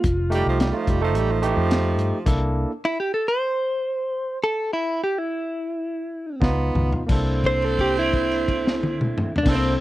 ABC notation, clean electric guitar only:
X:1
M:4/4
L:1/16
Q:1/4=101
K:Cmix
V:1 name="Clean electric guitar"
F8 z8 | z4 E G A c8 A- | A E2 G E8 z4 | z2 c A G E8 D C2 |]